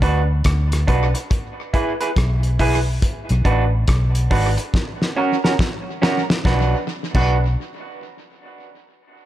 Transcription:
0.02 D2 D4 F#4 B4, kick, closed hi-hat
0.44 D2, kick, cross-stick, closed hi-hat
0.72 cross-stick, closed hi-hat
0.87 B1 D4 F#4 B4, kick, closed hi-hat
1.14 muted clean electric guitar stroke, closed hi-hat
1.31 kick, closed hi-hat
1.74 E4 G#4 B4, kick, closed hi-hat
2.01 E4 G#4 B4, closed hi-hat
2.16 B1, kick, cross-stick, closed hi-hat
2.43 closed hi-hat
2.59 E4 G#4 B4, kick, open hi-hat
3.02 kick, closed hi-hat
3.29 B1, closed hi-hat
3.45 A1 D4 F#4 B4, kick, closed hi-hat
3.88 B1, kick, cross-stick, closed hi-hat
4.15 closed hi-hat
4.31 G#1 D4 F#4 B4, kick, open hi-hat
4.57 muted clean electric guitar stroke, closed hi-hat
4.74 kick, snare
5.02 snare
5.16 C#4 F#4 A#4
5.44 C#4 F#4 A#4, snare
5.59 kick, snare
6.02 C#4 F#4 A#4, snare
6.30 snare
6.45 B1 D4 F#4 B4, kick, snare
7.15 B1 D4 F#4 B4, kick, crash

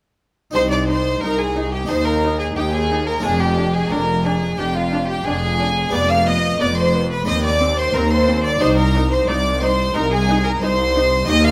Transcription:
0.51 C2 D#4 G4 C5 C6
0.55 D#4
0.71 D5 D6
0.88 D#4 C5 C6
1.21 C2 D#4 A#4 A#5
1.38 G#4 G#5
1.56 D#4
1.72 G4 G5
1.86 D#2 D#4 G4 C5 C6
1.90 D#4
2.05 A#4 A#5
2.24 D#4
2.39 G#4 G#5
2.56 D#2 D#4 G4 G5
2.73 G#4 G#5
2.91 D#4
3.06 A#4 A#5
3.19 G#3 D4 F4
3.23 F1 F2 D4 G#4 G#5
3.40 G4 G5
3.57 D4
3.74 G#4 G#5
3.90 F1 F2 D4 A#4 A#5
4.24 D4 G#4 G#5
4.58 F1 F2 D4 G4 G5
4.74 F4 F5
4.92 D4
5.08 G4 G5
5.25 F1 F2 D4 G#4 G#5
5.59 D4
5.89 F1 F2 B3 G4 D5 D6
6.10 F5 F6
6.26 B3 D#5 D#6
6.60 F1 F2 B3 D5 D6
6.77 C5 C6
6.94 B3
7.10 B4 B5
7.25 D#2 C4 G4 D#5 D#6
7.44 D5 D6
7.61 C4
7.78 C5 C6
7.94 D#2 C4 A#4 A#5
8.10 C5 C6
8.27 C4
8.44 D5 D6
8.58 C2 D#4 G4 C5 C6
8.62 C5
8.77 A#4 A#5
8.95 D#4
9.11 C5 C6
9.27 C2 D#4 D5 D6
9.61 D#4 C5 C6
9.94 C2 D#4 A#4 A#5
10.11 G#4 G#5
10.28 D#4
10.44 A#4 A#5
10.60 C2 D#4 C5 C6
10.96 D#4
11.25 D#2 D#4 G4 D#5 D#6
11.45 F5 F6

